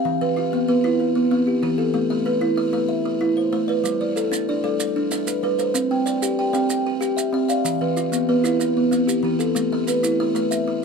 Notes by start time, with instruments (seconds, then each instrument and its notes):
Already playing: kalimba F5
0.05 kalimba E3
0.21 kalimba E3 B4
0.36 kalimba F4
0.53 kalimba B3
0.68 kalimba B3 B4
0.84 kalimba E4 F4 B4
1.00 kalimba B4
1.15 kalimba B3
1.31 kalimba B3 C4
1.47 kalimba G4
1.63 kalimba E3 G4
1.78 kalimba F4 A4
1.94 kalimba A3
2.10 kalimba A3 E5
2.26 kalimba B4
2.41 kalimba E4
2.57 kalimba E4 E5
2.73 kalimba A3 B4 E5
2.89 kalimba E5
3.05 kalimba E4
3.21 kalimba E4
3.37 kalimba C5
3.53 kalimba A3 C5
3.68 kalimba B4 D5
3.84 kalimba G3, maracas
4.01 kalimba G3 D5
4.16 kalimba A4, maracas
4.32 kalimba D4, maracas
4.49 kalimba D4 D5
4.64 kalimba G3 A4 D5
4.80 kalimba D5, maracas
4.96 kalimba D4
5.11 kalimba D4 E5, maracas
5.27 kalimba B4, maracas
5.43 kalimba G3 B4
5.59 kalimba A4 C5, maracas
5.74 kalimba C4, maracas
5.91 kalimba C4 G5
6.06 kalimba D5, maracas
6.22 kalimba G4, maracas
6.39 kalimba G4 G5
6.53 kalimba C4 D5 G5, maracas
6.70 kalimba G5, maracas
6.87 kalimba G4
7.01 kalimba G4, maracas
7.17 kalimba E5, maracas
7.33 kalimba C4 E5
7.49 kalimba D5 F5, maracas
7.65 kalimba E3, maracas
7.81 kalimba E3 B4
7.97 kalimba F4, maracas
8.12 kalimba B3, maracas
8.29 kalimba B3 B4
8.44 kalimba E4 F4 B4, maracas
8.60 kalimba B4, maracas
8.77 kalimba B3
8.91 kalimba B3 C4, maracas
9.07 kalimba G4, maracas
9.23 kalimba E3 G4
9.39 kalimba F4 A4, maracas
9.55 kalimba A3, maracas
9.72 kalimba A3 E5
9.87 kalimba B4, maracas
10.03 kalimba E4, maracas
10.20 kalimba E4 E5
10.35 kalimba A3 B4 E5, maracas
10.51 kalimba E5, maracas
10.68 kalimba E4